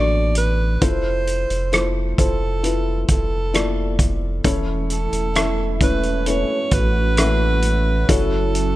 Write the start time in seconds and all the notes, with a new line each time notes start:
Already playing: A1 D4 F#4 A4 B4 C#5 D5
0.35 B4, closed hi-hat
0.81 F1 E4 F4 A4 C5, kick, closed hi-hat
1.27 closed hi-hat
1.50 F1, closed hi-hat
1.72 E4 F4 A4 C5, cross-stick, closed hi-hat
2.18 F1 E4 F4 A4 C5, kick, closed hi-hat
2.63 E4 F4 A4 B4, closed hi-hat
3.08 F1 A4, kick, closed hi-hat
3.53 E4 F4 A4 D5, cross-stick, closed hi-hat
3.99 kick, closed hi-hat
4.44 E1 E3 A3 C#4 E4 A4 C#5, kick, closed hi-hat
4.90 A4, closed hi-hat
5.12 E1, closed hi-hat
5.35 C#4 E4 A4 E5, cross-stick, closed hi-hat
5.81 C#4 E4 A4 B4 C#5, kick, closed hi-hat
6.03 closed hi-hat
6.26 C#4 E4 F#4 A4 B4 C#5, closed hi-hat
6.71 A1 B4, kick, closed hi-hat
7.17 C#4 E4 A4 E5, cross-stick, closed hi-hat
7.62 closed hi-hat
8.08 F#1 F#3 E4 F#4 A4 C#5, kick, closed hi-hat
8.55 closed hi-hat